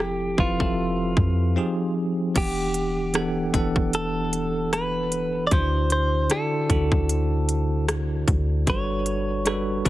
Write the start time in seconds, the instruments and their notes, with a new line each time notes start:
Already playing: 808-style bass F1, tine electric piano F3 C4 E4 G4 A4, clean electric guitar G4
0.00 cross-stick
0.38 808-style bass F1, tine electric piano F3 C4 E4 G4 B4, clean electric guitar F4, kick
0.59 808-style bass F1, tine electric piano F3 C4 G4 A4 E5, kick
1.17 808-style bass F2, kick
1.56 tine electric piano F3 C4 D#4 G4 G#4
2.35 808-style bass E1, tine electric piano E3 B3 D4 G4 F#5, clean electric guitar G4, kick, closed hi-hat, crash
2.74 closed hi-hat
3.14 tine electric piano E3 B3 D4 A4 F#5, cross-stick, closed hi-hat
3.53 808-style bass E1, tine electric piano E3 B3 D4 A4 F#5, kick, closed hi-hat
3.76 808-style bass E1, kick
3.93 clean electric guitar A4, closed hi-hat
4.33 closed hi-hat
4.73 clean electric guitar B4, cross-stick, closed hi-hat
5.12 closed hi-hat
5.47 tine electric piano D3, clean electric guitar D5
5.51 808-style bass D2, tine electric piano D4 E4 F#4 C5, clean electric guitar C5, kick, closed hi-hat
5.90 clean electric guitar C5, closed hi-hat
6.30 tine electric piano D3 D4 E4 F#4 D5, clean electric guitar A4, cross-stick, closed hi-hat
6.69 808-style bass D2, tine electric piano D3 D4 E4 F#4 A4, kick, closed hi-hat
6.92 808-style bass D2, kick
7.09 closed hi-hat
7.49 closed hi-hat
7.88 cross-stick, closed hi-hat
8.28 808-style bass D2, kick, closed hi-hat
8.67 808-style bass G1, tine electric piano G3 D4 F#4 A4 B4, clean electric guitar C#5, kick, closed hi-hat
9.06 closed hi-hat
9.45 tine electric piano G3 D4 F#4 A4 B4, cross-stick, closed hi-hat
9.85 808-style bass G1, tine electric piano G3 D4 F#4 A4, kick, closed hi-hat